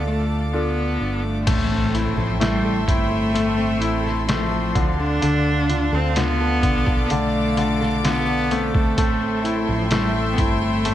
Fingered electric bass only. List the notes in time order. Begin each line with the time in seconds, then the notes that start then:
Already playing: D2
1.00 G1
1.47 A1
2.17 A1
2.88 G1
3.81 A1
4.76 D2
5.23 D2
5.92 D2
6.63 B1
8.98 A1
9.69 A1
10.38 G1